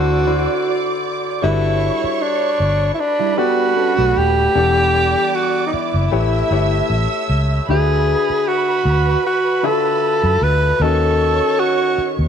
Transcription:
0.00 0.46 D2 loud
0.00 0.20 D3 medium
0.00 0.20 D4 medium
0.00 0.20 E4 medium
0.00 0.21 F#4 medium
0.00 1.05 F#4 medium
0.00 0.21 C5 medium
0.00 1.40 D5 medium
0.00 1.40 D6 medium
0.26 1.25 D3 medium
0.26 1.25 D4 medium
0.26 1.25 E4 medium
0.26 1.25 F#4 medium
0.26 1.26 C5 medium
1.42 1.89 G1 medium
1.42 2.73 G3 medium
1.42 2.74 D4 medium
1.42 2.23 E4 loud
1.42 2.74 F#4 medium
1.42 2.74 A4 medium
1.42 2.74 B4 medium
1.42 2.96 C#5 medium
1.42 2.96 C#6 medium
2.04 muted fingered electric bass stroke soft
2.22 2.93 D4 medium
2.60 2.89 G1 medium
2.94 3.01 E4 medium
2.99 3.39 D4 medium
2.99 4.52 B4 medium
2.99 4.52 B5 medium
3.19 3.37 G3 medium
3.19 3.37 E4 medium
3.38 4.37 G3 medium
3.38 3.76 B3 medium
3.38 4.37 D4 medium
3.38 4.19 F#4 loud
3.38 3.75 G4 medium
3.38 4.37 A4 medium
3.38 4.37 D5 medium
3.38 4.37 F#5 medium
3.76 3.97 C#4 medium
3.76 3.97 A4 medium
3.97 4.12 B1 medium
3.97 4.52 A3 medium
3.97 4.52 F#4 medium
4.17 4.46 D#1 medium
4.17 5.37 G4 loud
4.55 5.14 E1 medium
4.55 5.86 E3 medium
4.55 5.86 G3 medium
4.55 5.86 B3 medium
4.55 5.86 D4 medium
4.55 5.87 A4 medium
4.55 6.08 D5 medium
4.55 5.86 F#5 medium
4.55 6.08 D6 medium
5.35 5.66 F#4 medium
5.67 5.75 D#4 medium
5.74 7.30 E4 medium
5.74 muted fingered electric bass stroke soft
5.94 6.08 F#1 medium
6.11 6.42 A1 loud
6.11 6.45 A3 medium
6.11 6.45 E4 medium
6.11 6.45 G4 medium
6.11 6.45 B4 medium
6.11 6.45 C#5 medium
6.11 7.65 E5 medium
6.11 7.65 E6 medium
6.51 6.80 G1 medium
6.51 7.50 A3 medium
6.51 7.50 E4 medium
6.51 7.50 G4 medium
6.51 7.50 B4 medium
6.51 7.50 C#5 medium
6.90 7.06 A1 medium
7.30 7.59 C#2 medium
7.69 8.14 D2 medium
7.69 9.00 D3 medium
7.69 8.99 D4 medium
7.69 9.00 F#4 medium
7.69 8.50 G#4 medium
7.69 10.78 B4 medium
7.69 9.00 B4 medium
7.69 9.00 E5 medium
7.69 10.78 B5 medium
8.30 muted fingered electric bass stroke soft
8.48 9.25 F#4 medium
8.85 9.15 D2 medium
9.26 9.68 F#4 medium
9.63 10.62 D3 medium
9.63 10.62 D4 medium
9.63 9.71 F4 soft
9.63 10.45 A4 loud
9.63 10.63 B4 medium
9.63 10.63 E5 medium
9.70 10.66 F#4 medium
10.23 10.37 F#2 medium
10.42 10.71 D2 medium
10.42 10.83 B4 medium
10.80 11.39 D#2 medium
10.80 12.12 D#3 medium
10.80 12.12 C#4 medium
10.80 12.12 F#4 medium
10.80 12.12 A4 medium
10.80 11.61 A4 loud
10.80 12.28 C#5 medium
10.80 12.12 D#5 medium
10.80 12.28 C#6 medium
11.60 12.12 F#4 medium
11.98 muted fingered electric bass stroke soft
12.19 12.28 D#2 medium

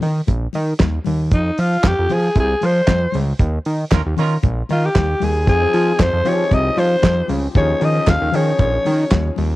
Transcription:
0.01 0.21 D#3 loud
0.01 open hi-hat medium
0.01 low conga medium
0.27 0.47 A#1 loud
0.27 kick loud
0.27 closed hi-hat medium
0.27 muted conga medium
0.27 low conga medium
0.53 0.74 D#3 loud
0.53 open hi-hat medium
0.53 muted conga medium
0.79 0.99 D#2 medium
0.79 kick loud
0.79 snare loud
0.79 clap medium
0.79 closed hi-hat medium
0.79 high conga medium
1.04 1.34 D#2 medium
1.04 open hi-hat medium
1.04 high conga medium
1.31 1.51 F2 loud
1.31 1.62 D#4 medium
1.31 kick loud
1.31 closed hi-hat medium
1.58 1.77 F3 loud
1.58 1.89 F4 medium
1.58 open hi-hat medium
1.84 1.94 F2 loud
1.84 2.15 G4 medium
1.84 kick loud
1.84 snare loud
1.84 clap loud
1.84 closed hi-hat medium
1.84 high conga medium
1.99 2.07 F2 medium
2.09 2.30 F3 medium
2.09 2.38 G#4 medium
2.09 open hi-hat medium
2.09 low conga medium
2.35 2.55 C2 loud
2.35 kick loud
2.35 closed hi-hat medium
2.35 muted conga medium
2.40 2.67 G#4 loud
2.61 2.81 F3 loud
2.61 open hi-hat medium
2.61 muted conga medium
2.66 3.16 C5 loud
2.87 3.07 F2 medium
2.87 kick loud
2.87 snare loud
2.87 clap medium
2.87 closed hi-hat medium
2.87 high conga medium
3.12 3.33 C#2 loud
3.12 open hi-hat medium
3.12 high conga medium
3.39 3.59 D#2 loud
3.39 kick loud
3.39 closed hi-hat medium
3.39 muted conga soft
3.65 3.85 D#3 medium
3.65 open hi-hat medium
3.91 4.02 D#2 loud
3.91 4.01 C#4 medium
3.91 4.01 F4 medium
3.91 4.01 A#4 medium
3.91 kick loud
3.91 snare loud
3.91 clap loud
3.91 clap medium
3.91 closed hi-hat medium
3.91 high conga medium
4.06 4.15 D#2 loud
4.17 4.37 D#3 loud
4.17 4.34 C#4 medium
4.17 4.34 F4 medium
4.17 4.34 A#4 medium
4.17 open hi-hat medium
4.17 low conga medium
4.43 4.63 A#1 loud
4.43 kick loud
4.43 closed hi-hat medium
4.43 muted conga medium
4.69 4.89 D#3 loud
4.69 4.87 F4 medium
4.69 open hi-hat medium
4.69 muted conga medium
4.86 5.25 G4 medium
4.95 5.15 D#2 medium
4.95 kick loud
4.95 snare loud
4.95 clap medium
4.95 closed hi-hat medium
4.95 high conga medium
5.20 5.49 D#2 loud
5.20 5.49 G#4 medium
5.20 open hi-hat medium
5.20 high conga medium
5.47 5.66 F2 loud
5.47 5.59 F3 medium
5.47 5.59 C4 medium
5.47 5.60 D#4 medium
5.47 5.60 G#4 medium
5.47 6.03 G#4 loud
5.47 kick loud
5.47 closed hi-hat medium
5.47 muted conga soft
5.61 6.18 F3 medium
5.61 6.18 C4 medium
5.61 6.18 D#4 medium
5.61 6.18 G#4 medium
5.73 5.93 F3 loud
5.73 open hi-hat medium
5.99 6.10 F2 loud
5.99 6.29 C5 loud
5.99 kick loud
5.99 snare loud
5.99 clap medium
5.99 closed hi-hat medium
5.99 high conga medium
6.13 6.22 F2 loud
6.24 7.17 F3 medium
6.24 6.44 F3 loud
6.24 7.17 C4 medium
6.24 7.17 D#4 medium
6.24 6.33 G4 medium
6.24 6.55 C#5 loud
6.24 open hi-hat medium
6.24 low conga medium
6.33 7.21 G#4 medium
6.51 6.71 C2 loud
6.51 6.81 D#5 loud
6.51 kick loud
6.51 closed hi-hat medium
6.51 muted conga medium
6.77 6.96 F3 loud
6.77 7.30 C5 loud
6.77 open hi-hat medium
6.77 muted conga medium
7.02 7.23 F2 medium
7.02 kick loud
7.02 snare loud
7.02 clap medium
7.02 closed hi-hat medium
7.02 high conga medium
7.28 7.48 C#2 loud
7.28 open hi-hat medium
7.28 high conga medium
7.55 7.75 D#2 loud
7.55 7.78 F3 medium
7.55 7.78 C#4 medium
7.55 7.78 D#4 medium
7.55 7.78 G#4 medium
7.55 7.86 C#5 loud
7.55 kick loud
7.55 closed hi-hat medium
7.55 muted conga soft
7.80 8.00 D#3 medium
7.80 8.26 F3 medium
7.80 8.27 C#4 medium
7.80 8.27 D#4 medium
7.80 8.27 G#4 medium
7.80 open hi-hat medium
7.85 8.11 D#5 loud
8.07 8.18 D#2 loud
8.07 8.37 F5 loud
8.07 kick loud
8.07 snare loud
8.07 clap loud
8.07 clap medium
8.07 closed hi-hat medium
8.07 high conga medium
8.22 8.30 D#2 loud
8.32 8.53 D#3 loud
8.32 9.24 F3 medium
8.32 9.25 C#4 medium
8.32 9.25 D#4 medium
8.32 9.25 G#4 medium
8.32 9.38 C#5 loud
8.32 open hi-hat medium
8.32 low conga loud
8.59 8.78 A#1 loud
8.59 kick loud
8.59 closed hi-hat medium
8.59 muted conga medium
8.59 low conga medium
8.85 9.05 D#3 loud
8.85 open hi-hat medium
8.85 muted conga medium
9.11 9.30 D#2 medium
9.11 kick loud
9.11 snare loud
9.11 clap medium
9.11 clap loud
9.11 closed hi-hat medium
9.11 high conga medium
9.36 9.56 D#2 loud
9.36 open hi-hat medium
9.36 high conga medium

